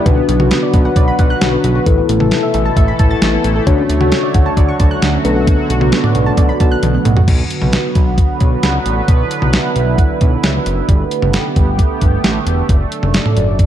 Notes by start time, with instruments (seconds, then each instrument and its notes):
Already playing: analog synth pad D3 B3
0.06 analog synth bass B1, synth pluck D3, analog synth pad F#3 F#4 B4, tine electric piano D4 F#4 B4, kick, closed hi-hat
0.17 synth pluck B3
0.29 analog synth bass B1, synth pluck F#3, closed hi-hat
0.40 synth pluck F#4, mid tom
0.51 synth pluck B3, snare, closed hi-hat
0.62 synth pluck D5
0.74 analog synth bass B1, synth pluck F#4, kick, closed hi-hat
0.85 synth pluck F#5
0.96 analog synth bass B1, synth pluck D5, kick, closed hi-hat
1.08 synth pluck B5
1.19 analog synth bass B1, synth pluck F#5, kick, closed hi-hat
1.30 synth pluck F#6
1.41 analog synth bass B1, synth pluck D3, tine electric piano D4 F#4 B4, snare, closed hi-hat
1.53 synth pluck B3
1.64 analog synth bass B1, synth pluck F#3, closed hi-hat
1.75 synth pluck F#4
1.86 analog synth bass A1, analog synth pad B2 E3 A3 E4 A4, synth pluck E3, tine electric piano E4 A4 B4, kick, closed hi-hat
1.98 synth pluck B3
2.09 analog synth bass A1, synth pluck A3, closed hi-hat
2.20 synth pluck A4, mid tom
2.31 synth pluck B3, snare, closed hi-hat
2.43 synth pluck E5
2.54 analog synth bass A1, synth pluck A4, closed hi-hat
2.65 synth pluck A5
2.76 analog synth bass A1, synth pluck E5, kick, closed hi-hat
2.88 synth pluck B5
2.99 analog synth bass A1, synth pluck A5, kick, closed hi-hat
3.11 synth pluck A6
3.22 analog synth bass A1, synth pluck E3, snare, closed hi-hat
3.33 synth pluck B3
3.44 analog synth bass A1, synth pluck A3, closed hi-hat
3.56 synth pluck A4
3.67 analog synth bass D2, synth pluck D3, analog synth pad D3 F#3 F#4 C#5, tine electric piano D4 F#4 C#5, kick, closed hi-hat
3.78 synth pluck C#4
3.89 analog synth bass D2, synth pluck A3, closed hi-hat
4.01 synth pluck F#4, mid tom
4.12 synth pluck C#4, snare, closed hi-hat
4.23 synth pluck D5
4.34 analog synth bass D2, synth pluck F#4, kick, closed hi-hat
4.46 synth pluck A5
4.57 analog synth bass D2, synth pluck D5, kick, closed hi-hat
4.68 synth pluck C#6
4.80 analog synth bass D2, synth pluck A5, kick, closed hi-hat
4.91 synth pluck F#6
5.02 analog synth bass D2, synth pluck D3, snare, closed hi-hat
5.14 synth pluck C#4
5.25 analog synth bass B1, analog synth pad D3 B3, synth pluck A3, tine electric piano D4 A4 B4, closed hi-hat
5.36 synth pluck F#4
5.47 synth pluck D3, kick, closed hi-hat
5.59 synth pluck B3
5.70 analog synth bass B1, synth pluck A3, closed hi-hat
5.81 synth pluck F#4, mid tom
5.92 synth pluck B3, snare, closed hi-hat
6.04 synth pluck D5, mid tom
6.15 analog synth bass B1, synth pluck F#4, closed hi-hat
6.26 synth pluck A5
6.37 analog synth bass B1, synth pluck D5, kick, closed hi-hat
6.49 synth pluck B5
6.60 analog synth bass B1, synth pluck A5, kick, closed hi-hat
6.71 synth pluck F#6
6.83 analog synth bass B1, synth pluck D3, closed hi-hat, high tom
6.94 synth pluck B3
7.05 analog synth bass B1, synth pluck A3, closed hi-hat, mid tom
7.17 synth pluck F#4, floor tom
7.28 analog synth bass B1, analog synth pad D3 F#3 B3 F#4 B4, kick, closed hi-hat, crash
7.50 closed hi-hat
7.62 analog synth bass B1, mid tom
7.73 snare, closed hi-hat
7.95 analog synth bass B1, kick, closed hi-hat
8.18 kick, closed hi-hat
8.40 analog synth bass B1, kick, closed hi-hat
8.63 analog synth bass C#2, snare, closed hi-hat
8.86 analog synth bass A1, closed hi-hat
9.08 analog synth bass B1, analog synth pad E4, kick, closed hi-hat
9.31 closed hi-hat
9.42 analog synth bass B1, mid tom
9.53 snare, closed hi-hat
9.76 analog synth bass B1, closed hi-hat
9.98 kick, closed hi-hat
10.21 analog synth bass B1, kick, closed hi-hat
10.44 analog synth bass C#2, snare, closed hi-hat
10.66 analog synth bass F#1, closed hi-hat
10.89 analog synth bass G1, analog synth pad A3 B3 G4, kick, closed hi-hat
11.11 closed hi-hat
11.22 analog synth bass G1, mid tom
11.33 snare, closed hi-hat
11.56 analog synth bass G1, kick, closed hi-hat
11.79 kick, closed hi-hat
12.01 analog synth bass G1, kick, closed hi-hat
12.24 analog synth bass A1, snare, closed hi-hat
12.47 analog synth bass E1, closed hi-hat
12.69 analog synth bass F#1, analog synth pad F#3 D4 A4 D5, kick, closed hi-hat
12.92 closed hi-hat
13.03 analog synth bass F#1, mid tom
13.14 snare, closed hi-hat
13.26 mid tom
13.37 analog synth bass F#1, closed hi-hat
13.59 kick, closed hi-hat